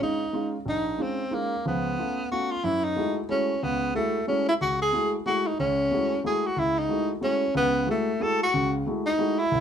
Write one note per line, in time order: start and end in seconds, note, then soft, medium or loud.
0.01 0.22 G#3 soft
0.01 0.22 C#4 soft
0.01 0.22 D#4 soft
0.01 0.51 D#4 medium
0.01 0.22 F4 soft
0.33 0.55 G#3 soft
0.33 0.55 C#4 soft
0.33 0.55 D#4 soft
0.33 0.55 F4 medium
0.66 0.94 A#1 medium
0.66 1.04 D#4 medium
0.98 1.20 G#3 soft
0.98 1.20 C#4 soft
0.98 1.20 D#4 soft
0.98 1.21 F4 soft
1.02 1.36 C4 medium
1.31 1.53 G#3 soft
1.31 1.66 A#3 medium
1.31 1.53 C#4 soft
1.31 1.53 D#4 soft
1.31 1.53 F4 medium
1.65 1.93 C#2 medium
1.65 1.93 F3 medium
1.65 2.28 B3 medium
1.98 2.19 A3 soft
1.98 2.19 B3 soft
1.98 2.19 C#4 soft
1.98 2.20 F4 medium
2.31 2.52 A3 soft
2.31 2.52 B3 soft
2.31 2.53 C#4 soft
2.31 2.53 F4 soft
2.31 2.53 F#4 medium
2.51 2.65 F4 medium
2.64 2.92 F#2 medium
2.64 2.86 E4 medium
2.84 3.17 D#4 medium
2.96 3.18 G#3 soft
2.96 3.18 A3 soft
2.96 3.18 E4 soft
2.96 3.18 F#4 medium
3.29 3.50 G#3 soft
3.29 3.50 A3 soft
3.29 3.65 C#4 medium
3.29 3.51 E4 soft
3.29 3.51 F#4 medium
3.63 3.91 C#2 medium
3.63 3.91 C#3 medium
3.63 3.95 B3 medium
3.95 4.16 G#3 medium
3.95 4.16 A3 soft
3.95 4.26 A3 medium
3.95 4.16 E4 soft
3.95 4.17 F#4 medium
4.27 4.49 G#3 medium
4.27 4.49 A3 soft
4.27 4.47 C#4 medium
4.27 4.49 E4 soft
4.27 4.49 F#4 medium
4.49 4.54 E4 medium
4.61 4.89 C#2 medium
4.61 4.80 F#4 medium
4.82 5.12 G#4 loud
4.93 5.14 G#3 medium
4.93 5.15 A3 soft
4.93 5.15 E4 soft
4.93 5.15 F#4 medium
5.26 5.47 G#3 medium
5.26 5.47 A3 soft
5.26 5.48 E4 medium
5.26 5.49 F#4 medium
5.26 5.48 F#4 medium
5.47 5.59 D#4 medium
5.59 5.87 C#2 medium
5.59 6.21 C#4 medium
5.91 6.13 G#3 soft
5.91 6.13 A3 soft
5.91 6.13 E4 soft
5.91 6.13 F#4 medium
6.24 6.46 G#3 soft
6.24 6.46 A3 soft
6.24 6.46 E4 soft
6.24 6.46 F#4 medium
6.24 6.48 G#4 medium
6.46 6.60 F#4 medium
6.56 6.85 C#2 medium
6.56 6.80 E4 medium
6.78 7.11 D#4 medium
6.89 7.11 G#3 soft
6.89 7.11 A3 soft
6.89 7.11 E4 soft
6.89 7.11 F#4 medium
7.21 7.43 G#3 soft
7.21 7.43 A3 soft
7.21 7.54 C#4 medium
7.21 7.43 E4 soft
7.21 7.44 F#4 medium
7.55 7.83 C#2 medium
7.55 7.83 C#3 medium
7.55 7.87 B3 loud
7.87 8.09 G#3 soft
7.87 8.09 A3 medium
7.87 8.24 A3 medium
7.87 8.09 E4 soft
7.87 8.09 F#4 medium
8.20 8.42 G#3 medium
8.20 8.42 A3 soft
8.20 8.42 E4 medium
8.20 8.42 F#4 medium
8.20 8.42 A4 medium
8.43 8.73 F#4 medium
8.54 8.82 C#2 medium
8.54 8.82 C#3 medium
8.87 9.08 G#3 medium
8.87 9.08 A3 soft
8.87 9.08 E4 soft
8.87 9.08 F#4 medium
9.06 9.41 D#4 medium
9.18 9.40 G#3 medium
9.18 9.40 A3 soft
9.18 9.40 E4 soft
9.18 9.40 F#4 medium
9.39 9.60 E4 loud
9.51 9.60 C2 medium